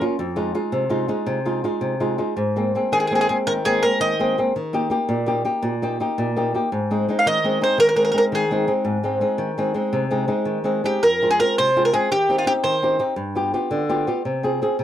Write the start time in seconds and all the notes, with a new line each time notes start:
0.01 A#3 C#4 F4
0.19 F2
0.36 G#3 D#4 F4
0.54 G#3 D#4 F4
0.72 C3
0.90 G#3 D#4 F4
1.08 G#3 D#4 F4
1.26 C3
1.45 G#3 D#4 F4
1.64 G#3 D#4 F4
1.81 C3
2.00 G#3 D#4 F4
2.18 G#3 D#4 F4
2.37 G#2
2.56 G#3 A#3 C4
2.75 G#3 A#3 C4
2.92 D#3 G#4
3.00 G#4
3.07 G#3 G#4
3.12 A#3 C4 G#4
3.21 G#4
3.29 G#3 A#3 C4 G#4
3.47 D#3 A#4
3.65 G#3 A#3 C4 G#4
3.83 G#3 A#3 C4 A#4
4.00 D#3 D#5
4.19 G#3 A#3 C4
4.38 G#3 A#3 C4
4.56 D#3
4.73 A#3 D#4 G4
4.90 A#3 D#4 G4
5.09 A#2
5.26 A#3 D#4 G4
5.45 A#3 D#4 G4
5.62 A#2
5.82 A#3 D#4 G4
6.00 A#3 D#4 G4
6.18 A#2
6.36 A#3 D#4 G4
6.54 A#3 D#4 G4
6.72 G#2
6.91 G#3 C4 D#4
7.08 G#3 C4 D#4
7.19 F5
7.26 D#3 D#5
7.44 G#3 C4 D#4
7.61 G#3 C4 D#4 C5
7.78 D#3 A#4
7.89 A#4
7.96 G#3 C4 D#4 A#4
8.05 A#4
8.12 G#3 C4 D#4 A#4
8.18 A#4
8.32 D#3 G#4
8.51 G#3 C4 D#4
8.67 G#3 C4 D#4
8.85 G#2
9.03 G#3 C4 D#4
9.21 G#3 C4 D#4
9.38 D#3
9.58 G#3 C4 D#4
9.74 G#3 C4 D#4
9.93 C3
10.11 G#3 C4 D#4
10.28 G#3 C4 D#4
10.45 D#3
10.64 G#3 C4 D#4
10.84 G#3 C4 D#4 G4
11.03 F2 A#4
11.22 G#3 C4 F4
11.31 G#4
11.39 G#3 C4 F4 A#4
11.58 C3 C5
11.76 G#3 C4 F4
11.85 A#4
11.93 G#3 C4 F4 G#4
12.11 D#3 G4
12.29 C4 D#4 G4
12.38 F4
12.46 C4 D#4 G4
12.64 D#3 C5
12.83 C4 D#4 G4
12.99 C4 D#4 G4
13.16 G2
13.35 B3 F4 G4
13.54 B3 F4 G4
13.71 D3
13.89 B3 F4 G4
14.07 B3 F4 G4
14.25 C3
14.43 C4 F4 G#4
14.62 C4 F4 G#4
14.79 C3